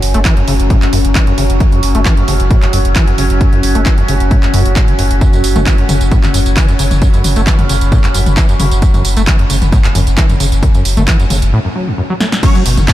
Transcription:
Already playing: F#3 C#4 F#4 F#5 C#6
0.02 F#1, open hi-hat
0.14 F#1 A3, closed hi-hat
0.25 E3, kick, clap, closed hi-hat
0.37 F#2, closed hi-hat
0.48 F#1 C#3, open hi-hat
0.59 F#1, closed hi-hat
0.70 A2, kick, closed hi-hat
0.82 F#2, clap, closed hi-hat
0.93 F#1 F#2, open hi-hat
1.05 F#1, closed hi-hat
1.15 E3, kick, clap, closed hi-hat
1.27 F#2, closed hi-hat
1.38 F#1 C#3, open hi-hat
1.50 F#1, closed hi-hat
1.60 F#2, kick, closed hi-hat
1.72 F#2, closed hi-hat
1.83 F#1, open hi-hat
1.95 F#1 A3, closed hi-hat
2.05 E3, kick, clap, closed hi-hat
2.17 F#2, closed hi-hat
2.28 F#1 C#3, open hi-hat
2.40 F#1, closed hi-hat
2.51 A2, kick, closed hi-hat
2.62 F#2, clap, closed hi-hat
2.73 F#1 F#2, open hi-hat
2.85 F#1, closed hi-hat
2.96 E3, kick, clap, closed hi-hat
3.08 F#2, closed hi-hat
3.18 F#1 C#3, open hi-hat
3.30 F#1, closed hi-hat
3.41 F#2, kick, closed hi-hat
3.53 F#2, closed hi-hat
3.63 F#1, open hi-hat
3.75 F#1 A3, closed hi-hat
3.86 E3, kick, clap, closed hi-hat
3.98 F#2, closed hi-hat
4.08 F#1 C#3, open hi-hat
4.20 F#1, closed hi-hat
4.31 A2, kick, closed hi-hat
4.43 F#2, clap, closed hi-hat
4.54 F#1 F#2, open hi-hat
4.65 F#1, closed hi-hat
4.76 A2, kick, clap, closed hi-hat
4.88 E3, closed hi-hat
4.99 F#1 F#2, open hi-hat
5.11 F#1, closed hi-hat
5.21 F#2, kick, closed hi-hat, mid tom, tambourine
5.33 F#2, closed hi-hat, tambourine
5.44 F#1, open hi-hat, tambourine
5.56 F#1 A3, closed hi-hat, mid tom, tambourine
5.66 E3, kick, clap, closed hi-hat, tambourine
5.78 F#2 B5, closed hi-hat
5.89 F#1 C#3, open hi-hat, mid tom, tambourine
6.01 F#1, closed hi-hat, tambourine
6.11 A2, kick, closed hi-hat, tambourine
6.23 F#2, clap, closed hi-hat, mid tom, tambourine
6.34 F#1 F#2, open hi-hat, tambourine
6.46 F#1, closed hi-hat, tambourine
6.57 E3, kick, clap, closed hi-hat, mid tom, tambourine
6.69 F#2, closed hi-hat, tambourine
6.79 F#1 C#3, open hi-hat, tambourine
6.91 F#1, closed hi-hat, mid tom, tambourine
7.02 F#2, kick, closed hi-hat, tambourine
7.14 F#2, closed hi-hat, tambourine
7.24 F#1, open hi-hat, mid tom, tambourine
7.36 F#1 A3, closed hi-hat, tambourine
7.47 E3, kick, clap, closed hi-hat, tambourine
7.59 F#2, closed hi-hat, mid tom
7.69 F#1 C#3, open hi-hat, tambourine
7.81 F#1, closed hi-hat, tambourine
7.92 A2, kick, closed hi-hat, mid tom, tambourine
8.04 F#2, clap, closed hi-hat, tambourine
8.14 F#1 F#2, open hi-hat, tambourine
8.26 F#1, closed hi-hat, mid tom, tambourine
8.37 E3, kick, clap, closed hi-hat, tambourine
8.49 F#2, closed hi-hat, tambourine
8.60 F#1 C#3, open hi-hat, mid tom, tambourine
8.72 F#1, closed hi-hat, tambourine
8.82 F#2, kick, closed hi-hat, tambourine
8.94 F#2, closed hi-hat, mid tom, tambourine
9.05 F#1, open hi-hat, tambourine
9.17 F#1 A3, closed hi-hat, tambourine
9.27 E3, kick, clap, closed hi-hat, mid tom, tambourine
9.39 F#2, closed hi-hat
9.50 F#1 C#3, open hi-hat, tambourine
9.62 F#1, closed hi-hat, mid tom, tambourine
9.72 A2, kick, closed hi-hat, tambourine
9.84 F#2, clap, closed hi-hat, tambourine
9.95 F#1 F#2, open hi-hat, mid tom, tambourine
10.07 F#1, closed hi-hat, tambourine
10.18 E3, kick, clap, closed hi-hat, tambourine
10.29 F#2, closed hi-hat, mid tom, tambourine
10.40 F#1 C#3, open hi-hat, tambourine
10.52 F#1, closed hi-hat, tambourine
10.63 F#2, kick, closed hi-hat, mid tom, tambourine
10.75 F#2, closed hi-hat, tambourine
10.85 F#1, open hi-hat, tambourine
10.97 F#1 A3, closed hi-hat, mid tom, tambourine
11.08 E3, kick, clap, closed hi-hat, tambourine
11.20 F#2, closed hi-hat, tambourine
11.30 F#1 C#3, open hi-hat, mid tom, tambourine
11.42 F#1, closed hi-hat, tambourine
11.53 A2
11.65 F#2
11.75 F#3
11.87 E2
11.98 F#2
12.10 F#3
12.20 A3, snare
12.32 snare
12.43 F#2 F#3 C#4 C#5, kick, closed hi-hat, mid tom, crash, tambourine
12.55 F#3, closed hi-hat, tambourine
12.66 F#1 B2, open hi-hat, tambourine
12.77 F#1 F#3, closed hi-hat, mid tom, tambourine
12.88 A2, kick, clap, closed hi-hat, tambourine

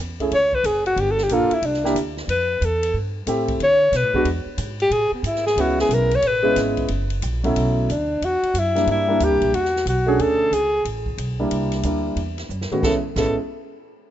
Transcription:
0.00 E2
0.20 A3 C#4 E4 G#4, kick, ride
0.31 C#2 C#5, ride
0.53 B4, kick
0.64 F#1 G#4, hi-hat pedal, ride
0.86 F#4, ride
0.96 G1 G4, ride
1.12 A4
1.18 snare
1.23 G4
1.29 A#1 A#3 D4 F4 A4, hi-hat pedal, ride
1.50 E4, muted upright bass stroke, ride
1.62 C2 D4, ride
1.74 snare
1.84 A#3 D4 E4 G4, snare
1.95 D2, hi-hat pedal, ride
2.17 snare
2.28 F2 B4, ride
2.61 E2 A4, hi-hat pedal, ride
2.83 ride
2.94 G2
3.27 A2 A3 C4 E4 G4, hi-hat pedal, ride
3.48 kick, ride
3.60 D3 C#5, ride
3.92 B2, snare, hi-hat pedal, ride
3.96 B4
4.03 A2
4.13 F#2 G#3 B3 D4 F#4, kick
4.25 E2, ride
4.46 muted upright bass stroke
4.58 G#2, hi-hat pedal, ride
4.80 G4, ride
4.91 A2 G#4, ride
5.12 B3, muted upright bass stroke
5.23 G#2 E4, hi-hat pedal, ride
5.35 snare
5.47 G#4, snare
5.56 C#2 G#3 B3 C#4 E4, ride
5.61 F#4
5.79 G#4, snare
5.89 B1, hi-hat pedal, ride
5.94 A#4
6.11 C#5, ride
6.22 A1, ride
6.27 B4
6.43 G#3 B3 C#4 E4
6.56 G#1, snare, hi-hat pedal, ride
6.77 kick, ride
6.88 F#1, ride
7.10 ride
7.22 A#1, hi-hat pedal, ride
7.44 B2 F#3 A3 C#4 E4, ride
7.56 B1, ride
7.89 D2 D4, hi-hat pedal, ride
8.21 E2 F#4, ride
8.43 muted upright bass stroke, ride
8.54 F#2, hi-hat pedal, ride
8.59 E4
8.75 G3 A#3 D4 E4, snare, ride
8.87 G2, ride
8.91 E4
9.08 G3 A#3 D4 E4
9.20 D2 G4, hi-hat pedal, ride
9.31 C2
9.42 A#1, kick, ride
9.53 E2 F#4, ride
9.65 snare
9.76 snare
9.86 B1 F#4, hi-hat pedal, ride
10.06 A3 C#4 D4 G#4
10.19 D2 A4, ride
10.51 C#2 G#4, hi-hat pedal, ride
10.85 A1, ride
11.06 kick
11.18 B1, hi-hat pedal, ride
11.39 G3 A#3 D4 E4
11.51 C2, ride
11.72 snare, ride
11.83 D2 G3 A#3 D4 E4, hi-hat pedal, ride
12.16 E2, ride
12.38 snare, ride
12.49 F#2, hi-hat pedal
12.61 snare
12.71 A2 G#3 B3 C#4 F#4, muted upright bass stroke, mid tom
12.83 A1 G#3 B3 C#4 E4 A4, kick, snare
13.16 A1 G#3 B3 C#4 E4 A4, kick, snare, crash

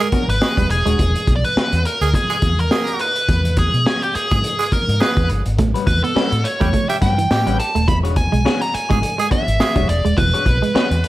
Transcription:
Already playing: A#4
0.00 closed hi-hat
0.12 B3 D4 F#4 G#4 C#5, muted fingered electric bass stroke, kick, closed hi-hat
0.28 G#1 B4, muted clean electric guitar stroke, closed hi-hat
0.41 G#4, muted clean electric guitar stroke, snare
0.57 E1 G3, muted clean electric guitar stroke, kick, closed hi-hat
0.70 E1 G#4, muted clean electric guitar stroke, closed hi-hat
0.86 D#1 G#3 D4 F#4 G#4 C#5, closed hi-hat
0.99 E1, kick, closed hi-hat
1.16 closed hi-hat
1.27 B1, kick, closed hi-hat
1.36 D5
1.44 B4, closed hi-hat
1.56 muted fingered electric bass stroke, snare
1.72 E2, closed hi-hat
1.85 A#4, closed hi-hat
2.01 D2 G#4, closed hi-hat
2.14 G#4, kick, closed hi-hat
2.30 G#4, closed hi-hat
2.42 E2, kick, closed hi-hat
2.59 A#4, closed hi-hat
2.71 G#4, snare
2.87 closed hi-hat
2.99 B4, closed hi-hat
3.16 closed hi-hat
3.29 E2, kick, closed hi-hat
3.45 closed hi-hat
3.57 G#4, kick, closed hi-hat
3.74 B2, closed hi-hat
3.86 G#4, snare
4.02 G4, closed hi-hat
4.15 G#4, muted fingered electric bass stroke, closed hi-hat
4.31 G#2 G#4, kick, closed hi-hat
4.44 closed hi-hat
4.59 G#4, closed hi-hat
4.72 A#4, muted fingered electric bass stroke, kick, closed hi-hat
4.89 G#2, closed hi-hat
5.00 G#4 B4, snare
5.17 E2, kick, closed hi-hat
5.30 G1, closed hi-hat
5.46 G#1, closed hi-hat
5.58 A1 A3, muted clean electric guitar stroke, kick, closed hi-hat
5.74 G3 C#4 F#4 B4, closed hi-hat
5.87 E2 B4, muted clean electric guitar stroke, kick, closed hi-hat
6.03 B3 A4, muted clean electric guitar stroke, closed hi-hat
6.15 G3 C#4 F#4 B4, muted fingered electric bass stroke, snare
6.32 A2, muted clean electric guitar stroke, closed hi-hat
6.44 C#5, muted clean electric guitar stroke, closed hi-hat
6.60 E2 G3 A3 C#4 F#4 G4 B4, kick, closed hi-hat
6.73 A3, kick, closed hi-hat
6.89 G4 E5, muted clean electric guitar stroke, closed hi-hat
7.01 G2 G3 C#4 F#4 B4 G5, kick, snare, closed hi-hat
7.18 E3, closed hi-hat
7.31 A2 G4, muted clean electric guitar stroke, snare
7.46 A1 G3 C#4 F#4 B4, closed hi-hat
7.60 A5, muted clean electric guitar stroke, closed hi-hat
7.75 D#1 A3, muted clean electric guitar stroke, closed hi-hat
7.87 E1 E3 B5, muted clean electric guitar stroke, kick, closed hi-hat
8.03 D4 F#4 G#4 C#5, closed hi-hat
8.16 G#5, muted clean electric guitar stroke, kick, closed hi-hat
8.32 B1 G#3, muted clean electric guitar stroke, closed hi-hat
8.45 B3 D4 F#4 G#4 C#5, snare
8.61 A#5, muted clean electric guitar stroke, closed hi-hat
8.73 G#5, muted clean electric guitar stroke, muted fingered electric bass stroke, closed hi-hat
8.89 G#1 G#3 D4 F#4 G#4 C#5, kick, closed hi-hat
9.02 muted clean electric guitar stroke, closed hi-hat
9.18 G#3 G#4, closed hi-hat
9.30 B3 D4 F#4 G#4 C#5 E5, muted fingered electric bass stroke, kick, closed hi-hat
9.47 G#1, muted clean electric guitar stroke, closed hi-hat
9.59 G#4, muted clean electric guitar stroke, snare
9.75 E1 G3 D4 F#4 G#4 C#5, kick, closed hi-hat
9.88 E1 D5, muted clean electric guitar stroke, closed hi-hat
10.05 D#1 G#3, muted clean electric guitar stroke, closed hi-hat
10.17 E1 E3 B4, muted clean electric guitar stroke, kick, closed hi-hat
10.34 D4 F#4 G#4 C#5, closed hi-hat
10.46 B1, muted clean electric guitar stroke, kick, closed hi-hat
10.62 G#3, muted clean electric guitar stroke, closed hi-hat
10.74 B3 D4 F#4 G#4 C#5, muted fingered electric bass stroke, snare
10.91 E2, muted clean electric guitar stroke, closed hi-hat
11.03 muted clean electric guitar stroke, closed hi-hat

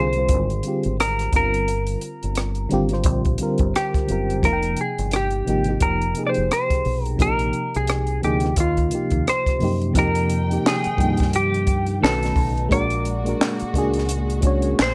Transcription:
Already playing: C2 D3 G3 C4 F4 A#4
0.00 G#4 C5
0.13 D3 G3, closed hi-hat
0.17 C4 F4 C5
0.29 G#1, kick, closed hi-hat
0.50 closed hi-hat
0.63 D3 G3 C4 F4, closed hi-hat
0.68 G4
0.83 G#1, closed hi-hat
1.00 A#4, cross-stick, closed hi-hat
1.19 cross-stick, closed hi-hat
1.32 G1 D3 G3 C4 F4, kick, closed hi-hat
1.36 A#4
1.54 closed hi-hat
1.68 closed hi-hat
1.87 closed hi-hat
2.01 closed hi-hat
2.23 G1, closed hi-hat
2.35 cross-stick, closed hi-hat
2.55 closed hi-hat
2.69 G#1 D3 G3 C4 F4, closed hi-hat
2.74 G4
2.89 D3 G3 C4 F4, closed hi-hat
2.93 C5, cross-stick
3.04 A#1, kick, closed hi-hat
3.25 kick, closed hi-hat
3.38 D3 G3 C4 F4, closed hi-hat
3.43 A#4
3.58 G1, kick, closed hi-hat
3.75 G4, cross-stick, closed hi-hat
3.94 kick, cross-stick, closed hi-hat
4.06 F#1 D3 G3 C4 F4, closed hi-hat
4.12 A#4
4.30 closed hi-hat
4.41 F1 C3 F3 A#3 D#4 A#4, kick, closed hi-hat
4.46 F4
4.53 G5
4.62 closed hi-hat
4.77 closed hi-hat
4.81 G#4
4.98 G1, closed hi-hat
5.11 cross-stick, closed hi-hat
5.16 G4
5.30 closed hi-hat
5.45 G#1 C3 F3 A#3 D#4, closed hi-hat
5.50 G4
5.64 C3 F3 A#3, closed hi-hat
5.69 D#4 G4
5.80 F1 A#4, kick, closed hi-hat
6.02 closed hi-hat
6.14 C3 F3 A#3 D#4, closed hi-hat
6.19 G#4
6.27 C5 D5
6.34 F1, closed hi-hat
6.51 C5, cross-stick, closed hi-hat
6.70 kick, cross-stick, closed hi-hat
6.85 B1, open hi-hat
7.05 A#4, closed hi-hat
7.17 A#1 C3 F3 A#3 D4, kick, closed hi-hat
7.22 G4 A#4
7.27 D#4
7.39 closed hi-hat
7.53 closed hi-hat
7.75 C2 G#4, closed hi-hat
7.87 cross-stick, closed hi-hat
8.07 closed hi-hat
8.21 D2 C3 F3 A#3 D#4 G4, closed hi-hat
8.25 G#4
8.40 C3 F3 A#3, closed hi-hat
8.45 D#4 G4, cross-stick
8.56 D#2 F4, kick, closed hi-hat
8.77 kick, closed hi-hat
8.90 C3 F3 A#3 D#4, closed hi-hat
8.95 G4
9.10 D#2, kick, closed hi-hat
9.27 C5, cross-stick, closed hi-hat
9.46 kick, cross-stick, closed hi-hat
9.59 F#2 C3 F3 A#3, open hi-hat
9.63 D#4 G4
9.82 closed hi-hat
9.94 F2 C3 D#3 F3 A#3 D#4 G5, kick, closed hi-hat
9.99 G4 A#4
10.15 closed hi-hat
10.30 closed hi-hat
10.48 C3 F3 A#3 D#4, closed hi-hat
10.53 G4
10.66 G#4, snare, clap
10.84 muted fingered electric bass stroke, closed hi-hat
10.96 G2 C3 F3 A#3 D#4, kick
11.00 G5, closed hi-hat
11.17 kick, closed hi-hat
11.22 snare
11.33 G4, closed hi-hat
11.54 closed hi-hat
11.67 kick, closed hi-hat
11.86 closed hi-hat
12.01 B1 C#3 D#3 A3 C#4 D#4 F#4 A4, snare
12.05 B4, clap
12.23 snare, closed hi-hat
12.36 B1, kick, open hi-hat
12.58 closed hi-hat
12.69 A#1 A#2 G#3 A#3 D4 F#4 D5, kick, closed hi-hat
12.74 A#4
12.90 closed hi-hat
13.05 closed hi-hat
13.25 G#3 A#3 D4 F#4, closed hi-hat
13.29 A#4
13.41 snare, clap
13.60 muted fingered electric bass stroke, closed hi-hat
13.73 C#2 G#3 A#3 D4 F#4, kick, closed hi-hat
13.78 G#4
13.93 closed hi-hat
13.98 snare
14.09 closed hi-hat
14.30 closed hi-hat
14.41 G#3 C#4 D4 F#4, kick, closed hi-hat
14.47 C#5
14.62 closed hi-hat
14.79 A#1 A#3 G#4 C5, snare, clap

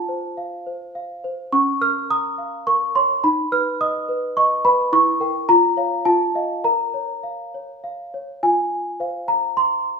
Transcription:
Already playing: F4 A5
0.09 C5
0.37 F5
0.67 C5
0.95 F5
1.24 C5
1.52 C#4 C#6
1.81 A#4 F6
2.10 A#5 D#6
2.38 F5
2.67 A#4 C#6
2.95 C#5 C6
3.24 D#4 B5
3.52 B4 F6
3.81 D#5 D#6
4.09 B4
4.37 D#5 C#6
4.65 B4 B5
4.93 E4 C#6
5.20 A#4 G5
5.49 F4 A#5
5.77 C#5 F5
6.05 F4 A5
6.35 D#5 F5
6.64 A#4 A#5
6.94 C#5
7.23 F5
7.54 C#5
7.84 F5
8.14 C#5
8.43 F4 G#5
9.00 C5 F5
9.28 A#5
9.57 C6

